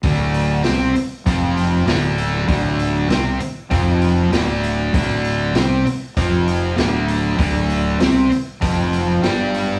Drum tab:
HH |o-o-o-o-o-o-o-o-|o-o-o-o-o-o-o-o-|o-o-o-o-o-o-o-o-|o-o-o-o-o-o-o-o-|
SD |----o-------o--o|----o-------o---|----o-------o---|----o-------o---|
BD |o-------o-------|o-------o-------|o-------o-------|o-------o-------|